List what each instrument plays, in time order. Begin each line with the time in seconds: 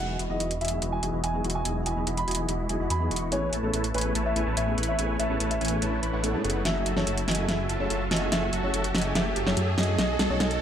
Already playing: felt piano F#3 B3
0.00 detuned saw bass E1, supersaw synth E3 E4 F#4 D#5 G#5, felt piano D#4 E4 G#4, grand piano F#5, riser
0.19 detuned saw bass E1, supersaw synth E3 E4 F#4 D#5 B5, closed hi-hat
0.29 detuned saw bass E1, supersaw synth E3 E4 F#4 D#5 B5, felt piano F#3 B3 D#4 E4 G#4, grand piano D#5
0.40 detuned saw bass E1, supersaw synth E3 E4 F#4 D#5 B5, closed hi-hat
0.51 closed hi-hat
0.61 detuned saw bass E1, supersaw synth E3 E4 F#4 D#5 G#5, grand piano E5, closed hi-hat
0.65 closed hi-hat
0.68 felt piano F#3 B3 D#4 E4, closed hi-hat
0.73 felt piano G#4
0.82 detuned saw bass E1, supersaw synth E3 E4 F#4 D#5 B5, closed hi-hat
0.92 grand piano G#5
1.02 detuned saw bass E1, supersaw synth E3 E4 F#4 D#5 G#5, felt piano F#3 B3 D#4 E4 G#4, closed hi-hat
1.13 detuned saw bass E1, supersaw synth E3 E4 F#4 D#5 B5
1.24 detuned saw bass E1, supersaw synth E3 E4 F#4 D#5 G#5, grand piano G#5, closed hi-hat
1.33 felt piano F#3 B3 D#4 E4 G#4
1.44 detuned saw bass E1, supersaw synth E3 E4 F#4 D#5 C#6, closed hi-hat
1.50 closed hi-hat
1.55 grand piano G#5
1.64 detuned saw bass E1, supersaw synth E3 E4 F#4 D#5 G#5, felt piano F#3 B3 D#4 E4 G#4, closed hi-hat
1.86 detuned saw bass E1, supersaw synth E3 E4 F#4 D#5 B5, grand piano G#5, closed hi-hat
1.96 detuned saw bass E1, supersaw synth E3 E4 F#4 D#5 B5, felt piano F#3 B3 D#4 E4 G#4
2.07 detuned saw bass E1, supersaw synth E3 E4 F#4 D#5 B5, closed hi-hat
2.17 grand piano B5, closed hi-hat
2.28 detuned saw bass E1, supersaw synth E3 E4 F#4 D#5 G#5, closed hi-hat
2.31 closed hi-hat
2.35 felt piano F#3 B3 D#4, closed hi-hat
2.39 felt piano E4 G#4
2.49 detuned saw bass E1, supersaw synth E3 E4 F#4 D#5 B5, closed hi-hat
2.68 detuned saw bass E1, supersaw synth E3 E4 F#4 D#5 G#5, felt piano F#3 B3 D#4 E4 G#4, closed hi-hat
2.80 detuned saw bass E1, supersaw synth E3 E4 F#4 D#5 B5
2.90 detuned saw bass E2, supersaw synth E3 E4 F#4 D#5 G#5, grand piano B5, closed hi-hat
3.00 felt piano F#3 B3 D#4 E4 G#4
3.11 detuned saw bass E1, supersaw synth E3 E4 F#4 D#5 C#6, closed hi-hat
3.16 closed hi-hat
3.31 detuned saw bass A1, felt piano A3 B3 C#4 E4 G#4, supersaw synth A3 E4 B4 C#5 G#5, grand piano C#5, closed hi-hat
3.53 detuned saw bass A1, supersaw synth A3 E4 B4 C#5 A5, closed hi-hat
3.62 detuned saw bass A1, felt piano A3 B3 C#4 E4 G#4, supersaw synth A3 E4 B4 C#5 A5, grand piano A4
3.73 detuned saw bass A1, supersaw synth A3 E4 B4 C#5 A5, closed hi-hat
3.84 closed hi-hat
3.94 detuned saw bass A1, supersaw synth A3 E4 B4 C#5 G#5, grand piano B4, closed hi-hat
3.98 closed hi-hat
4.01 felt piano A3 B3 C#4, closed hi-hat
4.05 felt piano E4 G#4
4.15 detuned saw bass A1, supersaw synth A3 E4 B4 C#5 A5, closed hi-hat
4.26 grand piano E5
4.35 detuned saw bass A1, felt piano A3 B3 C#4 E4 G#4, supersaw synth A3 E4 B4 C#5 G#5, closed hi-hat
4.46 detuned saw bass A1, supersaw synth A3 E4 B4 C#5 A5
4.57 detuned saw bass A1, supersaw synth A3 E4 B4 C#5 G#5, grand piano E5, closed hi-hat
4.66 felt piano A3 B3 C#4 E4 G#4
4.78 detuned saw bass A1, supersaw synth A3 E4 B4 C#5 B5, closed hi-hat
4.83 closed hi-hat
4.88 grand piano E5
4.98 detuned saw bass A1, felt piano A3 B3 C#4 E4 G#4, supersaw synth A3 E4 B4 C#5 G#5, closed hi-hat
5.19 detuned saw bass A1, supersaw synth A3 E4 B4 C#5 A5, grand piano E5, closed hi-hat
5.29 detuned saw bass A1, felt piano A3 B3 C#4 E4 G#4, supersaw synth A3 E4 B4 C#5 A5
5.40 detuned saw bass A1, supersaw synth A3 E4 B4 C#5 A5, closed hi-hat
5.51 grand piano E5, closed hi-hat
5.61 detuned saw bass A1, supersaw synth A3 E4 B4 C#5 G#5, closed hi-hat
5.65 closed hi-hat
5.68 felt piano A3 B3 C#4 E4, closed hi-hat
5.73 felt piano G#4
5.82 detuned saw bass A1, supersaw synth A3 E4 B4 C#5 A5, closed hi-hat
6.03 detuned saw bass A1, supersaw synth A3 E4 B4 C#5 B5, closed hi-hat
6.13 detuned saw bass A1, supersaw synth A3 E4 B4 C#5 F#5
6.23 felt piano A3 B3 C#4 E4 A4, grand piano A4, closed hi-hat
6.33 detuned saw bass A2, felt piano A3 B3 C#4 E4 G#4, supersaw synth A3 E4 B4 C#5 A5
6.44 detuned saw bass F#1, felt piano A3 B3 C#4 E4 G#4, supersaw synth A3 E4 B4 C#5 F#5, closed hi-hat
6.50 closed hi-hat
6.64 detuned saw bass F#1, felt piano F#3 A3 C#4 E4, supersaw synth F#3 F#4 A4 E5 G#5, grand piano E5, snare, closed hi-hat
6.86 detuned saw bass F#1, supersaw synth F#3 F#4 A4 E5 A5, closed hi-hat
6.96 detuned saw bass F#1, felt piano F#3 A3 C#4 E4 G#4, supersaw synth F#3 F#4 A4 E5 A5, grand piano C#5, snare
7.07 detuned saw bass F#1, supersaw synth F#3 F#4 A4 E5 A5, closed hi-hat
7.18 closed hi-hat
7.28 detuned saw bass F#1, supersaw synth F#3 F#4 A4 E5 G#5, grand piano D#5, snare, closed hi-hat
7.31 closed hi-hat
7.35 felt piano F#3 A3 C#4, closed hi-hat
7.39 felt piano E4 G#4
7.48 detuned saw bass F#1, felt piano F#3 A3 C#4 G#4, supersaw synth F#3 F#4 A4 E5 G#5, grand piano E5, snare, closed hi-hat
7.69 detuned saw bass F#1, supersaw synth F#3 F#4 A4 E5 A5, closed hi-hat
7.79 detuned saw bass F#1, felt piano F#3 A3 C#4 E4 G#4, supersaw synth F#3 F#4 A4 E5 A5, grand piano C#5
7.90 detuned saw bass F#1, supersaw synth F#3 F#4 A4 E5 A5, closed hi-hat
8.11 detuned saw bass F#1, supersaw synth F#3 F#4 A4 E5 G#5, grand piano D#5, snare, closed hi-hat
8.16 closed hi-hat
8.21 felt piano F#3 A3 C#4 E4 G#4
8.31 detuned saw bass F#1, felt piano F#3 A3 C#4 E4 G#4, supersaw synth F#3 F#4 A4 E5 G#5, grand piano E5, snare, closed hi-hat
8.53 detuned saw bass F#1, supersaw synth F#3 F#4 A4 E5 A5, closed hi-hat
8.62 detuned saw bass F#1, felt piano F#3 A3 C#4 E4 G#4, supersaw synth F#3 F#4 A4 E5 A5, grand piano C#5
8.74 detuned saw bass F#1, supersaw synth F#3 F#4 A4 E5 A5, closed hi-hat
8.84 closed hi-hat
8.94 detuned saw bass F#1, supersaw synth F#3 F#4 A4 E5 G#5, grand piano D#5, snare, closed hi-hat
8.98 closed hi-hat
9.02 felt piano F#3 A3 C#4, closed hi-hat
9.06 felt piano E4 G#4
9.14 detuned saw bass F#1, felt piano F#3 A3 C#4 E4 G#4, supersaw synth F#3 F#4 A4 E5 G#5, grand piano E5, snare, closed hi-hat
9.36 detuned saw bass F#1, supersaw synth F#3 F#4 A4 E5 A5, closed hi-hat
9.46 detuned saw bass F#1, felt piano F#3 A3 C#4 E4 G#4, supersaw synth F#3 F#4 A4 E5 A5, grand piano C#5, snare
9.57 detuned saw bass F#2, supersaw synth F#3 F#4 A4 E5 A5, closed hi-hat
9.78 detuned saw bass F#2, supersaw synth F#3 F#4 A4 E5 G#5, grand piano D#5, snare, closed hi-hat
9.83 closed hi-hat
9.87 felt piano F#3 A3 C#4 E4 G#4
9.98 detuned saw bass B1, felt piano F#3 A3 C#4 D#4 G#4, supersaw synth F#3 F#4 A4 D#5 G#5, grand piano D#5, snare, closed hi-hat
10.19 detuned saw bass B1, supersaw synth F#3 F#4 A4 D#5 A5, snare, closed hi-hat
10.29 detuned saw bass B1, felt piano F#3 A3 C#4 D#4 G#4, supersaw synth F#3 F#4 A4 D#5 A5, grand piano C#5
10.39 detuned saw bass B1, felt piano F#3 A3 C#4 D#4 G#4, supersaw synth F#3 F#4 A4 D#5 G#5, grand piano D#5, snare, closed hi-hat
10.51 closed hi-hat